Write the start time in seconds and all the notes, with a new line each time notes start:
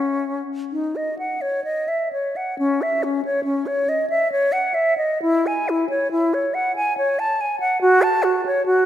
Already playing: C#4
0.72 D#4
0.96 D#5
1.19 F#5
1.41 C#5
1.64 D#5
1.88 E5
2.13 C#5
2.36 F#5
2.59 C#4
2.82 E5
3.03 C#4
3.25 C#5
3.44 C#4
3.67 C#5
3.89 D#5
4.10 E5
4.32 C#5
4.52 F#5
4.74 E5
4.98 D#5
5.22 E4
5.47 G#5
5.69 E4
5.90 C#5
6.11 E4
6.34 C#5
6.54 F#5
6.76 G#5
6.98 C#5
7.19 A5
7.41 G#5
7.60 F#5
7.81 F#4
8.02 A5
8.23 F#4
8.46 C#5
8.66 F#4